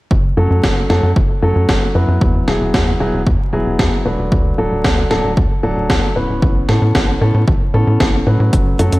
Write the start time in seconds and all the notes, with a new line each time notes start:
0.11 F#1, kick
0.37 F#2 F#3 A3 C#4 A4
0.50 F#2
0.63 F#1, kick, snare
0.90 F#2 F#3 A3 C#4 A4, snare
1.03 F#2
1.16 F#1, kick
1.42 F#2 F#3 A3 C#4 A4
1.56 F#2
1.69 F#1, kick, snare
1.95 F#2 F#3 B3 E4 B4
2.08 F#2
2.21 E2, kick
2.48 E1 F#3 B3 E4 G#4, snare
2.61 E1
2.74 E2, kick, snare
3.00 E1 F#3 B3 E4 G#4
3.14 E1
3.27 E2, kick
3.53 E1 F#3 B3 E4 G#4
3.66 E1
3.79 E2, kick, snare
4.05 E1 F#3 A3 D4 B4
4.19 E1
4.32 D2, kick
4.58 D1 F#3 A3 D4 A4
4.71 D1
4.84 D2, kick, snare
5.11 D1 F#3 A3 D4 A4, snare
5.24 D1
5.37 D2, kick
5.63 D1 F#3 A3 D4 A4
5.76 D1
5.90 D2, kick, snare
6.16 D1 E3 B3 C#4 B4
6.29 D1
6.42 A1, kick
6.69 A2 E3 B3 C#4 A4, snare
6.82 A2
6.95 A1, kick, snare
7.21 A2 E3 B3 C#4 A4
7.34 A2
7.48 A1, kick
7.74 A2 E3 B3 C#4 A4
7.87 A2
8.00 A1, kick, snare
8.27 A2 F#3 A3 C#4 B4
8.40 A2
8.53 F#1, kick, closed hi-hat
8.79 F#2 F#3 A3 C#4 A4, closed hi-hat
8.92 F#2, closed hi-hat